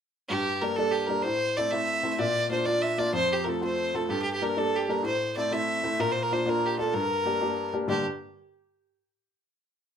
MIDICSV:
0, 0, Header, 1, 3, 480
1, 0, Start_track
1, 0, Tempo, 316456
1, 443, Time_signature, 6, 3, 24, 8
1, 15116, End_track
2, 0, Start_track
2, 0, Title_t, "Fiddle"
2, 0, Program_c, 0, 110
2, 443, Note_on_c, 0, 67, 95
2, 932, Note_on_c, 0, 70, 79
2, 955, Note_off_c, 0, 67, 0
2, 1154, Note_on_c, 0, 69, 96
2, 1177, Note_off_c, 0, 70, 0
2, 1387, Note_on_c, 0, 67, 82
2, 1409, Note_off_c, 0, 69, 0
2, 1614, Note_on_c, 0, 70, 80
2, 1637, Note_off_c, 0, 67, 0
2, 1857, Note_on_c, 0, 72, 100
2, 1879, Note_off_c, 0, 70, 0
2, 2377, Note_on_c, 0, 74, 82
2, 2400, Note_off_c, 0, 72, 0
2, 2598, Note_on_c, 0, 76, 97
2, 2621, Note_off_c, 0, 74, 0
2, 3208, Note_off_c, 0, 76, 0
2, 3208, Note_on_c, 0, 76, 67
2, 3320, Note_on_c, 0, 74, 97
2, 3343, Note_off_c, 0, 76, 0
2, 3799, Note_off_c, 0, 74, 0
2, 3808, Note_on_c, 0, 72, 79
2, 4025, Note_on_c, 0, 74, 86
2, 4047, Note_off_c, 0, 72, 0
2, 4281, Note_on_c, 0, 76, 76
2, 4304, Note_off_c, 0, 74, 0
2, 4526, Note_on_c, 0, 74, 88
2, 4549, Note_off_c, 0, 76, 0
2, 4757, Note_off_c, 0, 74, 0
2, 4766, Note_on_c, 0, 72, 98
2, 5041, Note_on_c, 0, 67, 81
2, 5064, Note_off_c, 0, 72, 0
2, 5215, Note_on_c, 0, 70, 57
2, 5238, Note_off_c, 0, 67, 0
2, 5297, Note_on_c, 0, 69, 72
2, 5320, Note_off_c, 0, 70, 0
2, 5508, Note_off_c, 0, 69, 0
2, 5527, Note_on_c, 0, 72, 82
2, 5997, Note_on_c, 0, 69, 69
2, 6020, Note_off_c, 0, 72, 0
2, 6216, Note_on_c, 0, 67, 92
2, 6239, Note_off_c, 0, 69, 0
2, 6384, Note_off_c, 0, 67, 0
2, 6402, Note_on_c, 0, 67, 75
2, 6554, Note_off_c, 0, 67, 0
2, 6564, Note_on_c, 0, 67, 85
2, 6715, Note_on_c, 0, 70, 74
2, 6738, Note_off_c, 0, 67, 0
2, 6947, Note_on_c, 0, 69, 88
2, 6969, Note_off_c, 0, 70, 0
2, 7218, Note_on_c, 0, 67, 72
2, 7241, Note_off_c, 0, 69, 0
2, 7437, Note_on_c, 0, 70, 71
2, 7459, Note_off_c, 0, 67, 0
2, 7656, Note_off_c, 0, 70, 0
2, 7677, Note_on_c, 0, 72, 81
2, 8116, Note_off_c, 0, 72, 0
2, 8144, Note_on_c, 0, 74, 78
2, 8387, Note_on_c, 0, 76, 85
2, 8409, Note_off_c, 0, 74, 0
2, 9105, Note_on_c, 0, 70, 94
2, 9128, Note_off_c, 0, 76, 0
2, 9282, Note_on_c, 0, 72, 84
2, 9305, Note_off_c, 0, 70, 0
2, 9449, Note_on_c, 0, 70, 89
2, 9471, Note_off_c, 0, 72, 0
2, 9600, Note_on_c, 0, 72, 74
2, 9623, Note_off_c, 0, 70, 0
2, 9844, Note_on_c, 0, 70, 79
2, 9867, Note_off_c, 0, 72, 0
2, 10096, Note_on_c, 0, 67, 75
2, 10118, Note_off_c, 0, 70, 0
2, 10286, Note_off_c, 0, 67, 0
2, 10295, Note_on_c, 0, 69, 73
2, 10523, Note_on_c, 0, 70, 91
2, 10546, Note_off_c, 0, 69, 0
2, 11729, Note_off_c, 0, 70, 0
2, 11963, Note_on_c, 0, 67, 83
2, 12201, Note_off_c, 0, 67, 0
2, 15116, End_track
3, 0, Start_track
3, 0, Title_t, "Upright piano"
3, 0, Program_c, 1, 0
3, 452, Note_on_c, 1, 43, 60
3, 942, Note_on_c, 1, 55, 37
3, 944, Note_on_c, 1, 58, 37
3, 956, Note_on_c, 1, 62, 40
3, 1162, Note_off_c, 1, 55, 0
3, 1170, Note_off_c, 1, 58, 0
3, 1174, Note_off_c, 1, 62, 0
3, 1184, Note_on_c, 1, 55, 42
3, 1193, Note_on_c, 1, 58, 37
3, 1197, Note_on_c, 1, 62, 47
3, 1626, Note_off_c, 1, 55, 0
3, 1634, Note_off_c, 1, 58, 0
3, 1645, Note_off_c, 1, 62, 0
3, 1649, Note_on_c, 1, 55, 45
3, 1657, Note_on_c, 1, 58, 38
3, 1667, Note_on_c, 1, 62, 51
3, 1848, Note_off_c, 1, 43, 0
3, 1877, Note_off_c, 1, 55, 0
3, 1881, Note_off_c, 1, 58, 0
3, 1886, Note_off_c, 1, 62, 0
3, 1890, Note_on_c, 1, 45, 57
3, 2387, Note_on_c, 1, 57, 40
3, 2392, Note_on_c, 1, 60, 32
3, 2394, Note_on_c, 1, 64, 47
3, 2588, Note_off_c, 1, 57, 0
3, 2596, Note_off_c, 1, 60, 0
3, 2601, Note_off_c, 1, 64, 0
3, 2610, Note_on_c, 1, 57, 43
3, 2618, Note_on_c, 1, 60, 38
3, 2624, Note_on_c, 1, 64, 46
3, 3059, Note_off_c, 1, 57, 0
3, 3060, Note_off_c, 1, 60, 0
3, 3071, Note_off_c, 1, 64, 0
3, 3082, Note_on_c, 1, 57, 43
3, 3083, Note_on_c, 1, 60, 45
3, 3094, Note_on_c, 1, 64, 42
3, 3288, Note_off_c, 1, 45, 0
3, 3314, Note_off_c, 1, 57, 0
3, 3314, Note_off_c, 1, 60, 0
3, 3319, Note_on_c, 1, 46, 61
3, 3320, Note_off_c, 1, 64, 0
3, 3787, Note_on_c, 1, 58, 44
3, 3808, Note_on_c, 1, 62, 35
3, 3809, Note_on_c, 1, 65, 42
3, 4012, Note_off_c, 1, 62, 0
3, 4013, Note_off_c, 1, 58, 0
3, 4030, Note_off_c, 1, 65, 0
3, 4035, Note_on_c, 1, 62, 39
3, 4036, Note_on_c, 1, 58, 41
3, 4052, Note_on_c, 1, 65, 49
3, 4497, Note_off_c, 1, 58, 0
3, 4497, Note_off_c, 1, 62, 0
3, 4506, Note_off_c, 1, 65, 0
3, 4519, Note_on_c, 1, 58, 50
3, 4519, Note_on_c, 1, 62, 37
3, 4529, Note_on_c, 1, 65, 52
3, 4721, Note_off_c, 1, 46, 0
3, 4751, Note_on_c, 1, 41, 59
3, 4752, Note_off_c, 1, 58, 0
3, 4752, Note_off_c, 1, 62, 0
3, 4757, Note_off_c, 1, 65, 0
3, 5243, Note_on_c, 1, 57, 39
3, 5255, Note_on_c, 1, 60, 32
3, 5255, Note_on_c, 1, 65, 39
3, 5456, Note_off_c, 1, 57, 0
3, 5462, Note_off_c, 1, 60, 0
3, 5464, Note_off_c, 1, 65, 0
3, 5479, Note_on_c, 1, 57, 43
3, 5484, Note_on_c, 1, 60, 36
3, 5486, Note_on_c, 1, 65, 46
3, 5957, Note_off_c, 1, 57, 0
3, 5958, Note_off_c, 1, 60, 0
3, 5962, Note_off_c, 1, 65, 0
3, 5980, Note_on_c, 1, 57, 41
3, 5981, Note_on_c, 1, 60, 41
3, 5993, Note_on_c, 1, 65, 43
3, 6155, Note_off_c, 1, 41, 0
3, 6202, Note_off_c, 1, 57, 0
3, 6202, Note_off_c, 1, 60, 0
3, 6204, Note_on_c, 1, 43, 62
3, 6208, Note_off_c, 1, 65, 0
3, 6691, Note_on_c, 1, 55, 40
3, 6701, Note_on_c, 1, 58, 31
3, 6706, Note_on_c, 1, 62, 41
3, 6904, Note_off_c, 1, 55, 0
3, 6908, Note_off_c, 1, 58, 0
3, 6911, Note_off_c, 1, 62, 0
3, 6926, Note_on_c, 1, 55, 41
3, 6931, Note_on_c, 1, 58, 40
3, 6934, Note_on_c, 1, 62, 47
3, 7391, Note_off_c, 1, 55, 0
3, 7398, Note_off_c, 1, 58, 0
3, 7400, Note_off_c, 1, 62, 0
3, 7414, Note_on_c, 1, 55, 49
3, 7421, Note_on_c, 1, 58, 41
3, 7423, Note_on_c, 1, 62, 44
3, 7600, Note_off_c, 1, 43, 0
3, 7626, Note_on_c, 1, 45, 61
3, 7638, Note_off_c, 1, 55, 0
3, 7641, Note_off_c, 1, 58, 0
3, 7642, Note_off_c, 1, 62, 0
3, 8143, Note_on_c, 1, 60, 34
3, 8147, Note_on_c, 1, 57, 41
3, 8157, Note_on_c, 1, 64, 47
3, 8338, Note_off_c, 1, 57, 0
3, 8346, Note_off_c, 1, 60, 0
3, 8361, Note_on_c, 1, 57, 44
3, 8363, Note_off_c, 1, 64, 0
3, 8369, Note_on_c, 1, 60, 46
3, 8385, Note_on_c, 1, 64, 47
3, 8825, Note_off_c, 1, 57, 0
3, 8838, Note_off_c, 1, 60, 0
3, 8840, Note_off_c, 1, 64, 0
3, 8848, Note_on_c, 1, 57, 48
3, 8860, Note_on_c, 1, 60, 41
3, 8863, Note_on_c, 1, 64, 51
3, 9029, Note_off_c, 1, 45, 0
3, 9073, Note_off_c, 1, 57, 0
3, 9079, Note_off_c, 1, 60, 0
3, 9081, Note_off_c, 1, 64, 0
3, 9093, Note_on_c, 1, 46, 63
3, 9576, Note_on_c, 1, 58, 41
3, 9588, Note_on_c, 1, 62, 41
3, 9590, Note_on_c, 1, 65, 47
3, 9777, Note_off_c, 1, 58, 0
3, 9788, Note_off_c, 1, 62, 0
3, 9798, Note_off_c, 1, 65, 0
3, 9799, Note_on_c, 1, 58, 49
3, 9811, Note_on_c, 1, 62, 44
3, 9821, Note_on_c, 1, 65, 47
3, 10267, Note_off_c, 1, 62, 0
3, 10269, Note_off_c, 1, 58, 0
3, 10274, Note_off_c, 1, 65, 0
3, 10290, Note_on_c, 1, 62, 43
3, 10291, Note_on_c, 1, 58, 43
3, 10297, Note_on_c, 1, 65, 47
3, 10482, Note_off_c, 1, 46, 0
3, 10513, Note_off_c, 1, 58, 0
3, 10513, Note_off_c, 1, 62, 0
3, 10516, Note_off_c, 1, 65, 0
3, 10519, Note_on_c, 1, 43, 62
3, 11003, Note_on_c, 1, 58, 36
3, 11014, Note_on_c, 1, 67, 49
3, 11017, Note_on_c, 1, 62, 30
3, 11219, Note_off_c, 1, 58, 0
3, 11223, Note_off_c, 1, 62, 0
3, 11237, Note_off_c, 1, 67, 0
3, 11242, Note_on_c, 1, 58, 41
3, 11246, Note_on_c, 1, 62, 43
3, 11260, Note_on_c, 1, 67, 45
3, 11710, Note_off_c, 1, 58, 0
3, 11710, Note_off_c, 1, 62, 0
3, 11710, Note_off_c, 1, 67, 0
3, 11732, Note_on_c, 1, 62, 38
3, 11732, Note_on_c, 1, 67, 48
3, 11733, Note_on_c, 1, 58, 42
3, 11914, Note_off_c, 1, 43, 0
3, 11937, Note_off_c, 1, 58, 0
3, 11945, Note_on_c, 1, 43, 53
3, 11948, Note_off_c, 1, 62, 0
3, 11948, Note_on_c, 1, 55, 44
3, 11949, Note_on_c, 1, 50, 47
3, 11953, Note_off_c, 1, 67, 0
3, 11960, Note_on_c, 1, 58, 47
3, 11971, Note_on_c, 1, 62, 56
3, 12191, Note_off_c, 1, 43, 0
3, 12193, Note_off_c, 1, 55, 0
3, 12194, Note_off_c, 1, 50, 0
3, 12200, Note_off_c, 1, 58, 0
3, 12205, Note_off_c, 1, 62, 0
3, 15116, End_track
0, 0, End_of_file